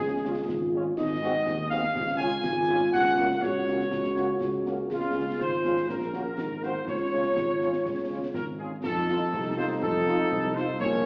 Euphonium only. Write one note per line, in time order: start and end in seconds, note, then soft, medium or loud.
0.00 0.35 C#4 medium
0.49 0.94 F4 medium
0.97 1.63 D#4 medium
1.94 2.41 C#4 medium
2.43 3.38 F4 medium
3.42 3.88 F#4 medium
3.91 4.86 F#4 medium
4.91 5.36 G#4 medium
5.40 5.85 F4 medium
5.89 6.35 C#4 medium
6.38 6.87 D#4 medium
6.86 8.58 F4 medium
9.32 10.27 A3 medium
10.30 10.76 C4 medium
10.80 11.06 A#3 medium